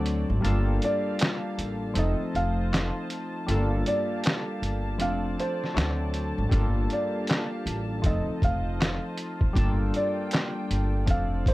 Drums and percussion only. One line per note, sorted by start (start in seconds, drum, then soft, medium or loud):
0.06 closed hi-hat medium
0.45 closed hi-hat medium
0.82 closed hi-hat medium
1.19 snare loud
1.19 clap loud
1.19 closed hi-hat loud
1.59 closed hi-hat medium
1.95 closed hi-hat medium
2.35 closed hi-hat soft
2.74 snare loud
2.74 clap medium
2.74 closed hi-hat medium
3.10 closed hi-hat medium
3.48 closed hi-hat medium
3.86 closed hi-hat medium
4.24 snare loud
4.24 clap medium
4.24 closed hi-hat medium
4.63 closed hi-hat medium
5.00 closed hi-hat medium
5.40 closed hi-hat medium
5.64 snare soft
5.78 snare loud
5.78 clap medium
5.78 closed hi-hat medium
6.14 closed hi-hat medium
6.51 kick loud
6.51 closed hi-hat medium
6.90 closed hi-hat medium
7.27 snare loud
7.27 clap medium
7.27 closed hi-hat medium
7.67 closed hi-hat medium
8.04 kick loud
8.04 closed hi-hat medium
8.42 kick medium
8.42 closed hi-hat soft
8.81 snare loud
8.81 clap medium
8.81 closed hi-hat medium
9.17 closed hi-hat medium
9.41 kick medium
9.55 kick loud
9.55 closed hi-hat medium
9.94 closed hi-hat medium
10.31 snare loud
10.31 clap medium
10.31 closed hi-hat medium
10.71 closed hi-hat medium
11.07 kick medium
11.07 closed hi-hat medium
11.46 kick medium
11.46 closed hi-hat medium